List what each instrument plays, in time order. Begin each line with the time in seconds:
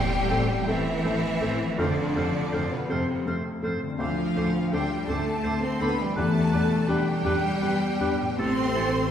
Already playing: felt piano A1 E2, harp A2 A3 C4 G4 A4, cello section G3, french horn section G3, violin section G4 G5, oboe C5
0.30 double bass section A1, viola section A3 C4, felt piano C4 A4, clarinet A4, oboe C5, flute E6
0.67 double bass section A1, french horn section E3, cello section E3, viola section A3 C4, felt piano C4 A4, violin section E4 E5, clarinet A4, oboe C5, flute E6
1.04 double bass section A1, felt piano A3, viola section A3 C4, clarinet A4, oboe C5, flute E6
1.40 double bass section A1, viola section A3 C4, felt piano C4 A4, clarinet A4, oboe C5, flute E6
1.61 harp F3
1.66 harp A3
1.70 harp C4
1.75 felt piano F2, french horn section D3, harp A4, clarinet A4, oboe C5, flute F6
1.79 double bass section F2, cello section D3, viola section A3 C4, violin section D4 D5
2.15 double bass section F2, felt piano C3, viola section A3 C4, clarinet A4, oboe C5, flute F6
2.52 double bass section F2, viola section A3 C4, felt piano C4 A4, clarinet A4, oboe C5, flute F6
2.71 cello section B2, french horn section B2, violin section B3 B4
2.89 double bass section F2, cello section C3, french horn section C3, viola section A3 C4, violin section C4 C5, felt piano C4 A4, clarinet A4, oboe C5, flute F6
3.26 double bass section F2, felt piano A3, viola section A3 C4, clarinet A4, oboe C5, flute F6
3.62 double bass section F2, viola section A3 C4, felt piano C4 A4, clarinet A4, oboe C5, flute F6
3.83 harp D3
3.87 harp C4
3.92 harp D4
3.96 felt piano D2, cello section F3, french horn section F3, viola section C4, harp A4, clarinet A4, oboe C5, flute D6
4.00 double bass section D2, viola section A3, violin section F4 F5
4.36 double bass section D2, felt piano A2, viola section A3 C4, clarinet A4, oboe C5, flute D6
4.72 double bass section D2, cello section G3, french horn section G3, viola section A3 C4, felt piano D4 A4, violin section G4 G5, clarinet A4, oboe C5, flute D6
5.08 double bass section D2, cello section A3, french horn section A3, viola section A3 C4, felt piano D4 A4, clarinet A4, violin section A4 A5, oboe C5, flute D6
5.44 double bass section D2, viola section A3 C4, felt piano C4, clarinet A4, oboe C5, flute D6
5.63 cello section C4, french horn section C4, violin section C5 C6
5.79 double bass section D2, viola section A3 C4, french horn section B3, cello section B3, felt piano D4 A4, clarinet A4, violin section B4 B5, oboe C5, flute D6
5.98 harp E3, french horn section G3, cello section G3, violin section G4 G5
6.05 harp B3
6.09 harp D4
6.14 double bass section E2, felt piano E2, viola section G3 D4, cello section A3, french horn section A3, harp G4, clarinet G4, violin section A4 A5, oboe B4
6.18 flute D6
6.51 double bass section E2, felt piano B2, viola section G3 D4, clarinet G4, oboe B4, flute D6
6.87 double bass section E2, french horn section G3, cello section G3, viola section G3 D4, felt piano D4 G4, violin section G4 G5, clarinet G4, oboe B4, flute D6
7.24 double bass section E2, viola section G3 D4, felt piano D4 G4, clarinet G4, oboe B4, flute D6
7.61 double bass section E2, viola section G3 D4, felt piano B3, clarinet G4, oboe B4, flute D6
8.00 double bass section E2, viola section G3 D4, felt piano D4 G4, clarinet G4, oboe B4, flute D6
8.21 harp A2
8.25 harp A3
8.30 harp C4
8.34 double bass section A1, french horn section C4, cello section C4, harp G4, clarinet G4, violin section C5 C6
8.39 felt piano A2, viola section A3 C4, oboe A4, flute E6
8.74 felt piano E3, clarinet G4, oboe A4, flute E6